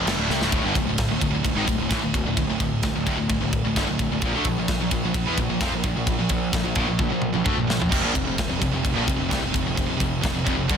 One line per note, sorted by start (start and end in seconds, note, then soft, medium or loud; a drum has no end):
0.06 0.16 G1 loud
0.06 0.18 G2 medium
0.06 0.18 D3 loud
0.06 snare loud
0.06 crash medium
0.17 0.28 D1 medium
0.17 0.30 D2 medium
0.21 0.31 A2 loud
0.29 0.40 C2 medium
0.29 0.42 C3 medium
0.29 0.42 G3 loud
0.29 snare medium
0.41 0.51 D1 medium
0.41 0.52 D2 loud
0.41 0.53 A2 loud
0.41 snare medium
0.52 0.63 D1 medium
0.52 0.64 D2 loud
0.52 0.65 A2 loud
0.52 kick loud
0.52 ride loud
0.64 0.74 G1 medium
0.64 0.76 G2 medium
0.64 0.76 D3 medium
0.73 0.86 D1 medium
0.73 0.88 D2 medium
0.73 0.84 A2 medium
0.73 kick medium
0.73 ride medium
0.78 0.88 A2 medium
0.85 1.09 D1 medium
0.85 1.05 D2 medium
0.89 1.07 D2 medium
0.89 1.07 A2 medium
0.98 kick loud
0.98 snare loud
0.98 ride loud
1.10 1.21 D1 medium
1.10 1.21 D2 medium
1.10 1.21 A2 medium
1.21 1.33 D1 medium
1.21 1.33 D2 medium
1.21 1.34 A2 medium
1.21 kick medium
1.21 ride medium
1.31 1.44 D1 medium
1.31 1.44 D2 medium
1.31 1.43 A2 medium
1.35 1.44 A2 medium
1.45 1.55 D1 medium
1.45 1.56 D2 medium
1.45 1.57 A2 medium
1.45 kick loud
1.45 ride loud
1.56 1.67 G#1 loud
1.56 1.67 G#2 medium
1.56 1.68 D#3 loud
1.68 1.78 D1 medium
1.68 1.80 D2 medium
1.68 1.80 A2 medium
1.68 kick medium
1.68 ride medium
1.79 1.90 D1 medium
1.79 1.91 D2 medium
1.79 1.91 A2 medium
1.91 2.02 A1 medium
1.91 2.03 A2 loud
1.91 2.03 E3 loud
1.91 kick loud
1.91 snare loud
1.91 ride loud
2.04 2.14 D1 medium
2.04 2.14 D2 medium
2.04 2.15 A2 medium
2.14 2.25 D1 medium
2.14 2.25 D2 medium
2.14 2.25 A2 medium
2.14 kick medium
2.14 ride medium
2.26 2.37 D1 medium
2.26 2.37 D2 medium
2.26 2.38 A2 medium
2.37 2.48 D1 medium
2.37 2.48 D2 medium
2.37 2.49 A2 medium
2.37 kick loud
2.37 ride loud
2.46 2.60 D1 medium
2.46 2.59 D2 medium
2.46 2.58 A2 medium
2.51 2.60 A2 medium
2.60 2.82 D1 medium
2.60 2.79 D2 medium
2.60 2.79 A2 medium
2.60 kick medium
2.60 ride medium
2.83 2.95 D1 medium
2.83 2.94 D2 medium
2.83 2.94 A2 medium
2.83 kick loud
2.83 snare loud
2.83 ride loud
2.95 3.06 D1 medium
2.95 3.05 D2 medium
2.95 3.06 A2 medium
3.06 3.18 D1 medium
3.06 3.16 D2 medium
3.06 3.17 A2 loud
3.06 kick medium
3.06 ride medium
3.18 3.29 D1 medium
3.18 3.28 D2 medium
3.18 3.29 A2 medium
3.29 3.40 D1 medium
3.29 3.40 D2 medium
3.29 3.40 A2 medium
3.29 kick loud
3.29 ride loud
3.41 3.63 D1 medium
3.41 3.60 D2 medium
3.41 3.60 A2 medium
3.53 kick medium
3.53 ride medium
3.64 3.75 D1 medium
3.64 3.76 D2 medium
3.64 3.77 A2 medium
3.76 3.88 G1 loud
3.76 3.87 G2 medium
3.76 3.88 D3 loud
3.76 kick loud
3.76 snare loud
3.76 ride loud
3.88 3.99 D1 medium
3.88 4.00 D2 medium
3.88 4.00 A2 medium
3.99 4.10 D1 medium
3.99 4.10 D2 medium
3.99 4.11 A2 medium
3.99 kick medium
3.99 ride medium
4.11 4.22 D1 medium
4.11 4.23 D2 medium
4.11 4.23 A2 medium
4.22 4.33 A#1 loud
4.22 4.34 A#2 loud
4.22 4.34 F3 loud
4.22 kick loud
4.22 ride loud
4.33 4.44 D2 medium
4.33 4.45 D3 medium
4.33 4.46 A3 medium
4.45 4.56 A#1 medium
4.45 4.57 A#2 medium
4.45 4.57 F3 medium
4.45 kick medium
4.45 ride medium
4.58 4.79 A#1 medium
4.58 4.76 A#2 medium
4.58 4.77 F3 medium
4.68 kick loud
4.68 snare loud
4.68 ride loud
4.80 4.91 A#1 medium
4.80 4.91 A#2 medium
4.80 4.91 F3 medium
4.91 5.02 A#1 medium
4.91 5.04 A#2 medium
4.91 5.04 F3 medium
4.91 kick medium
4.91 ride medium
5.03 5.13 A#1 medium
5.03 5.14 A#2 medium
5.03 5.15 F3 medium
5.14 5.25 A#1 medium
5.14 5.27 A#2 medium
5.14 5.27 F3 medium
5.14 kick loud
5.14 ride loud
5.27 5.37 E2 medium
5.27 5.38 E3 loud
5.27 5.38 B3 loud
5.37 5.49 A#1 medium
5.37 5.48 A#2 medium
5.37 5.49 F3 medium
5.37 kick medium
5.37 ride medium
5.49 5.61 A#1 medium
5.49 5.61 A#2 medium
5.49 5.60 F3 medium
5.61 5.71 F2 loud
5.61 5.71 F3 medium
5.61 5.72 C4 loud
5.61 kick loud
5.61 snare loud
5.61 ride loud
5.72 5.83 A#1 medium
5.72 5.83 A#2 medium
5.72 5.83 F3 medium
5.84 5.95 A#1 medium
5.84 5.95 A#2 medium
5.84 5.95 F3 medium
5.84 kick medium
5.84 ride medium
5.96 6.07 A#1 medium
5.96 6.05 A#2 medium
5.96 6.05 F3 medium
6.06 6.18 A#1 medium
6.06 6.17 A#2 medium
6.06 6.18 F3 medium
6.06 kick loud
6.06 ride loud
6.19 6.30 A#1 medium
6.19 6.29 A#2 medium
6.19 6.29 F3 medium
6.29 6.52 A#1 medium
6.29 6.49 A#2 medium
6.29 6.49 F3 medium
6.29 kick medium
6.29 ride medium
6.53 6.64 A#1 medium
6.53 6.64 A#2 medium
6.53 6.64 F3 medium
6.53 kick loud
6.53 snare loud
6.53 ride loud
6.65 6.75 A#1 medium
6.65 6.75 A#2 medium
6.65 6.76 F3 medium
6.75 6.87 A#1 loud
6.75 6.87 A#2 medium
6.75 6.87 F3 loud
6.75 kick medium
6.75 ride medium
6.88 6.98 A#1 medium
6.88 6.99 A#2 medium
6.88 6.99 F3 medium
6.99 7.10 A#1 medium
6.99 7.10 A#2 medium
6.99 7.10 F3 medium
6.99 kick loud
6.99 high tom medium
7.11 7.33 A#1 medium
7.11 7.30 A#2 medium
7.11 7.30 F3 medium
7.22 mid tom medium
7.34 7.45 A#1 medium
7.34 7.46 A#2 medium
7.34 7.45 F3 medium
7.34 mid tom medium
7.45 7.57 D2 medium
7.45 7.56 D3 medium
7.45 7.57 A3 loud
7.45 kick loud
7.45 mid tom medium
7.58 7.69 A#1 medium
7.58 7.68 A#2 medium
7.58 7.68 F3 medium
7.69 7.81 A#1 medium
7.69 7.79 A#2 medium
7.69 7.80 F3 medium
7.69 snare loud
7.80 7.91 A#1 medium
7.80 7.91 A#2 medium
7.80 7.92 F3 medium
7.80 floor tom medium
7.92 8.03 F1 medium
7.92 8.03 F2 loud
7.92 8.04 C3 loud
7.92 kick loud
7.92 crash loud
8.00 8.13 A#2 medium
8.05 8.15 A#1 medium
8.05 8.15 A#2 medium
8.05 8.16 F3 medium
8.15 8.26 F1 medium
8.15 8.26 F2 medium
8.15 8.26 C3 medium
8.15 kick medium
8.15 ride medium
8.27 8.49 F1 medium
8.27 8.46 F2 medium
8.27 8.46 C3 medium
8.38 kick loud
8.38 snare loud
8.38 ride loud
8.49 8.61 F1 medium
8.49 8.61 F2 medium
8.49 8.61 C3 medium
8.62 8.72 F1 medium
8.62 8.72 F2 medium
8.62 8.73 C3 medium
8.62 kick medium
8.62 ride medium
8.73 8.84 F1 medium
8.73 8.84 F2 medium
8.73 8.84 C3 medium
8.85 8.96 F1 medium
8.85 8.96 F2 medium
8.85 8.96 C3 medium
8.85 kick loud
8.85 ride loud
8.92 9.04 A#2 loud
8.96 9.07 A#1 medium
8.96 9.07 A#2 loud
8.96 9.08 F3 loud
9.07 9.18 F1 medium
9.07 9.19 F2 medium
9.07 9.19 C3 medium
9.07 kick loud
9.07 ride medium
9.20 9.31 F1 medium
9.20 9.31 F2 medium
9.20 9.30 C3 medium
9.31 9.42 C2 loud
9.31 9.42 C3 loud
9.31 9.43 G3 loud
9.31 kick loud
9.31 snare loud
9.31 ride loud
9.39 9.51 F2 medium
9.43 9.54 F1 medium
9.43 9.53 F2 medium
9.43 9.54 C3 medium
9.54 9.65 F1 medium
9.54 9.65 F2 medium
9.54 9.66 C3 medium
9.54 kick medium
9.54 ride medium
9.63 9.77 F2 medium
9.63 9.74 C3 medium
9.67 9.77 F1 medium
9.67 9.77 C3 medium
9.77 9.88 F1 medium
9.77 9.89 F2 medium
9.77 9.89 C3 medium
9.77 kick loud
9.77 ride loud
9.86 10.00 F1 medium
9.86 10.00 F2 medium
9.86 9.96 C3 medium
9.91 10.00 C3 medium
9.96 10.17 F2 medium
9.96 10.17 C3 medium
9.96 kick medium
10.00 10.22 F1 medium
10.00 10.19 F2 medium
10.00 10.19 C3 medium
10.00 ride medium
10.23 10.33 F1 medium
10.23 10.33 F2 medium
10.23 10.33 C3 medium
10.23 kick loud
10.23 snare loud
10.23 ride loud
10.34 10.45 F1 medium
10.34 10.44 F2 medium
10.34 10.45 C3 medium
10.45 10.56 F1 medium
10.45 10.56 F2 medium
10.45 10.56 C3 medium
10.45 kick medium
10.45 ride medium
10.57 10.68 F1 medium
10.57 10.69 F2 medium
10.57 10.69 C3 medium
10.70 10.77 G1 loud
10.70 10.77 G2 medium
10.70 10.77 D3 medium
10.70 kick loud
10.70 ride loud